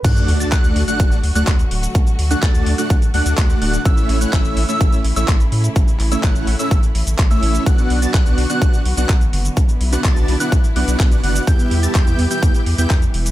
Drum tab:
CC |x---------------|----------------|----------------|----------------|
HH |xxoxxxoxxxoxxxox|xxoxxxoxxxoxxxox|xxoxxxoxxxoxxxox|xxoxxxoxxxoxxxox|
SH |xx-xxx-xxx-xxx-x|xx-xxx-xxx-xxx-x|xx-xxx-xxx-xxx-x|xx-xxx-xxx-xxx-x|
CP |----x-------x---|----x-------x---|----x-------x---|--x-x-------x---|
BD |o---o---o---o---|o---o---o---o---|o---o---o---o---|o---o---o---o---|

CC |----------------|----------------|----------------|
HH |xxoxxxoxxxoxxxox|xxoxxxoxxxoxxxox|xxoxxxoxxxoxxxox|
SH |xx-xxx-xxx-xxx-x|xx-xxx-xxx-xxx-x|xx-xxx-xxx-xxx-x|
CP |----x-------x---|----x-------x---|----x-------x---|
BD |o---o---o---o---|o---o---o---o---|o---o---o---o---|